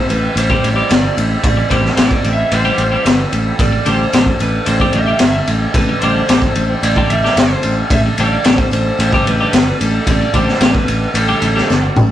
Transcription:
Already playing: tonewheel organ G3 C4 E4 A4
0.09 fingered electric bass A1, electric slide guitar B4, ride, tambourine
0.36 fingered electric bass A1, electric slide guitar C5, muted clean electric guitar stroke, ride
0.50 clean electric guitar E3 G3 C4 G4, kick
0.63 fingered electric bass A1, electric slide guitar D5, ride
0.76 clean electric guitar E3 G3 C4 G4
0.90 fingered electric bass G1, snare, ride, tambourine
1.04 muted clean electric guitar stroke
1.17 fingered electric bass A1, ride, tambourine
1.44 fingered electric bass A1, electric slide guitar D5, kick, ride, tambourine
1.57 muted clean electric guitar stroke
1.70 fingered electric bass A1, clean electric guitar E3 G3 C4 G4, electric slide guitar C5, kick, ride, tambourine
1.85 snare
1.97 fingered electric bass A1, clean electric guitar E3 G3 C4 G4, electric slide guitar D5, snare, ride, tambourine
2.11 muted clean electric guitar stroke, kick
2.24 fingered electric bass A1, ride, tambourine
2.33 electric slide guitar E5
2.51 fingered electric bass A1, electric slide guitar C5, muted clean electric guitar stroke, ride, tambourine
2.65 clean electric guitar E3 G3 C4 G4
2.78 fingered electric bass A1, ride
2.92 clean electric guitar E3 G3 C4 G4
3.04 fingered electric bass G1, electric slide guitar B4, snare, ride, tambourine
3.19 muted clean electric guitar stroke
3.32 fingered electric bass A1, ride, tambourine
3.59 fingered electric bass A1, tonewheel organ G3 A3 D4, electric slide guitar D5, kick, ride, tambourine
3.72 muted clean electric guitar stroke
3.86 fingered electric bass A1, clean electric guitar D3 G3 D4 G4, electric slide guitar C5, ride, tambourine
4.13 fingered electric bass A1, clean electric guitar D3 G3 D4 G4, snare, ride, tambourine
4.26 kick
4.39 fingered electric bass A1, electric slide guitar B4, ride, tambourine
4.66 fingered electric bass A1, electric slide guitar C5, muted clean electric guitar stroke, ride
4.80 clean electric guitar D3 G3 D4 G4, kick
4.93 fingered electric bass A1, electric slide guitar E5, ride
5.07 clean electric guitar D3 G3 D4 G4
5.19 fingered electric bass G1, snare, ride, tambourine
5.35 muted clean electric guitar stroke
5.47 fingered electric bass A1, ride, tambourine
5.74 fingered electric bass A1, electric slide guitar B4, kick, ride, tambourine
5.89 muted clean electric guitar stroke
6.01 fingered electric bass A1, clean electric guitar D3 G3 D4 G4, electric slide guitar C5, ride
6.29 fingered electric bass A1, clean electric guitar D3 G3 D4 G4, snare, ride, tambourine
6.42 muted clean electric guitar stroke, kick
6.55 fingered electric bass A1, ride, tambourine
6.83 fingered electric bass A1, electric slide guitar D5, muted clean electric guitar stroke, ride
6.96 clean electric guitar D3 G3 D4 G4, kick
7.10 fingered electric bass A1, electric slide guitar E5, ride
7.24 clean electric guitar D3 G3 D4 G4, snare
7.36 fingered electric bass G1, electric slide guitar C5, snare, ride, tambourine
7.53 muted clean electric guitar stroke
7.63 fingered electric bass A1, ride, tambourine
7.90 fingered electric bass A1, electric slide guitar E5, kick, ride, tambourine
8.06 muted clean electric guitar stroke
8.18 fingered electric bass A1, clean electric guitar D3 G3 D4 G4, electric slide guitar D5, ride, tambourine
8.44 fingered electric bass A1, clean electric guitar D3 G3 D4 G4, snare, ride, tambourine
8.58 muted clean electric guitar stroke, kick
8.71 fingered electric bass A1, electric slide guitar C5, ride, tambourine
8.99 fingered electric bass A1, electric slide guitar C5, muted clean electric guitar stroke, ride
9.13 clean electric guitar D3 G3 D4 G4, kick
9.27 fingered electric bass A1, electric slide guitar B4, ride
9.40 clean electric guitar D3 G3 D4 G4
9.53 fingered electric bass G1, snare, ride, tambourine
9.68 muted clean electric guitar stroke
9.81 fingered electric bass A1, electric slide guitar A4, ride, tambourine
10.07 fingered electric bass A1, electric slide guitar D5, kick, ride, tambourine
10.21 muted clean electric guitar stroke
10.34 fingered electric bass A1, clean electric guitar D3 G3 D4 G4, electric slide guitar C5, kick, ride, tambourine
10.49 snare
10.61 fingered electric bass A1, clean electric guitar D3 G3 D4 G4, electric slide guitar B4, snare, ride, tambourine
10.75 kick
10.87 fingered electric bass A1, ride, tambourine
11.14 fingered electric bass A1, muted clean electric guitar stroke, ride
11.19 electric slide guitar A4
11.29 clean electric guitar D3 G3 D4 G4
11.42 fingered electric bass A1, ride, tambourine
11.56 clean electric guitar D3 G3 D4 G4, snare
11.70 fingered electric bass G1, snare, tambourine
11.83 muted clean electric guitar stroke
11.96 fingered electric bass A1, mid tom, tambourine

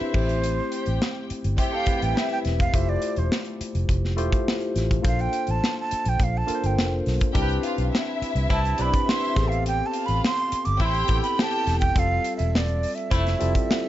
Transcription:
Already playing: tine electric piano C4 D4 E4 G4 B4, string section E4 E5, flute C5
0.00 muted fingered electric bass stroke, closed hi-hat
0.13 fingered electric bass A1, tine electric piano A3 C4 E4 G4 C5, kick, crash
0.29 closed hi-hat
0.44 closed hi-hat
0.72 string section G4 G5, closed hi-hat
0.86 fingered electric bass A1, closed hi-hat
1.02 snare
1.30 muted fingered electric bass stroke, closed hi-hat
1.44 fingered electric bass G1, closed hi-hat
1.58 clean electric guitar E4 C5, string section G4 G5, flute E5, kick, closed hi-hat
1.72 clean electric guitar C4 A4, flute F5
1.86 tine electric piano A3 C4 E4 G4 B4, clean electric guitar B3 G4, muted fingered electric bass stroke, kick, closed hi-hat
2.00 fingered electric bass A1, clean electric guitar G3 E4, flute G5, closed hi-hat
2.16 string section E4 E5, snare
2.30 flute G5, closed hi-hat
2.45 fingered electric bass E1, snare, closed hi-hat
2.60 flute F5, kick, closed hi-hat
2.73 fingered electric bass F1, tine electric piano A3 E4 F4 G4 C5, flute E5, kick, closed hi-hat
2.89 flute D5
3.02 closed hi-hat
3.16 fingered electric bass E1, flute C5, closed hi-hat
3.32 snare
3.45 closed hi-hat
3.61 muted fingered electric bass stroke, closed hi-hat
3.75 fingered electric bass F1, closed hi-hat
3.89 fingered electric bass F1, kick, closed hi-hat
4.05 snare
4.17 fingered electric bass E1, tine electric piano A3 E4 F4 G4 C5, closed hi-hat
4.32 kick, closed hi-hat
4.48 snare
4.60 closed hi-hat
4.76 fingered electric bass A1, snare, closed hi-hat
4.91 kick, closed hi-hat
5.02 fingered electric bass A#1, tine electric piano A#3 D4 F4 A4 C5, kick, closed hi-hat
5.07 flute F5
5.19 flute G5, closed hi-hat
5.33 closed hi-hat
5.47 fingered electric bass A1, flute A5, closed hi-hat
5.64 snare
5.80 flute A5
5.91 muted fingered electric bass stroke, closed hi-hat
6.05 fingered electric bass A#1, flute G5, closed hi-hat
6.20 fingered electric bass A#1, flute F5, kick, closed hi-hat
6.37 flute A5
6.46 tine electric piano A#3 D4 F4 A4 A#4, closed hi-hat
6.55 tine electric piano C5
6.64 fingered electric bass G1, flute G5, closed hi-hat
6.78 fingered electric bass F1, snare
7.06 fingered electric bass B1, snare, open hi-hat
7.21 kick, closed hi-hat
7.33 fingered electric bass C2, tine electric piano C4 D4 E4 G4 A#4, string section G4 G5, kick, closed hi-hat
7.42 tine electric piano B4
7.50 closed hi-hat
7.63 string section F4 F5, closed hi-hat
7.78 fingered electric bass B1, closed hi-hat
7.92 string section E4 E5, snare
8.22 muted fingered electric bass stroke, closed hi-hat
8.35 fingered electric bass C2, closed hi-hat
8.50 fingered electric bass C2, horn section E3 C4 E4, flute A5, kick, closed hi-hat
8.65 closed hi-hat
8.78 fingered electric bass B1, tine electric piano C4 D4 E4 G4 B4, string section D4 D5, flute B5, closed hi-hat
8.94 kick, closed hi-hat
9.07 string section E4 E5, flute C6, snare
9.35 fingered electric bass A1, tine electric piano B3 C4 G4 G#4, kick, snare, closed hi-hat
9.43 tine electric piano A4
9.48 flute F5, closed hi-hat
9.66 flute G5, closed hi-hat
9.86 flute A5
9.93 string section F4 F5, closed hi-hat
10.06 fingered electric bass A1, flute B5, closed hi-hat
10.24 flute C6, snare
10.37 closed hi-hat
10.52 muted fingered electric bass stroke, closed hi-hat
10.65 fingered electric bass G1, flute D6, closed hi-hat
10.80 fingered electric bass A1, horn section A3 C4 E4, string section G4 G5, flute C6, kick, closed hi-hat
10.94 closed hi-hat
11.07 fingered electric bass A1, tine electric piano B3 C4 E4 G4 A4, kick, closed hi-hat
11.23 flute B5, closed hi-hat
11.38 string section G4 G5, flute A5, snare
11.52 closed hi-hat
11.67 fingered electric bass E1, snare, closed hi-hat
11.80 flute G5, kick, closed hi-hat
11.95 fingered electric bass F1, tine electric piano G3 C4 F4 A4, flute F5, kick, closed hi-hat
12.24 closed hi-hat
12.37 fingered electric bass E1, flute E5, closed hi-hat
12.55 flute D5, snare
12.68 closed hi-hat
12.83 open hi-hat
12.95 flute E5, closed hi-hat
13.11 fingered electric bass F1, horn section A3 C4 E4, kick, closed hi-hat
13.27 snare, closed hi-hat
13.39 fingered electric bass F1, tine electric piano G3 C4 E4 F4 A4, closed hi-hat
13.55 kick, closed hi-hat
13.71 snare

